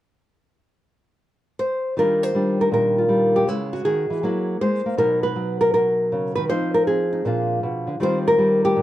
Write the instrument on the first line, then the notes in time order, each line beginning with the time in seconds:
nylon-string guitar
1.59 C5
1.97 D#3 G3 D4 F4 A#4
2.23 C5
2.35 G3 D4
2.61 A#4
2.72 A#2 A#4
2.98 F4
3.09 G3
3.36 G4
3.47 C#3 G#3 B3 E4
3.73 F#4
3.85 D#3 G#4
4.10 E3
4.23 F#3 A#3 E4
4.61 G#3 C5
4.86 A#3
4.97 B2 F#3 B3 D#4 A#4
5.23 B4
5.36 F#3
5.61 A#4
5.74 B2 A#4
6.12 C#3
6.35 D#3 B4
6.49 F3 C4 D#4 C5
6.74 A#4
6.87 C4 G#4
7.13 D#4
7.25 A#2 F3 D4 F4
7.63 B2
7.87 D3
8.00 D#3 G3 C4 F4 C5
8.28 A#4
8.38 G3
8.65 G4
8.77 A#2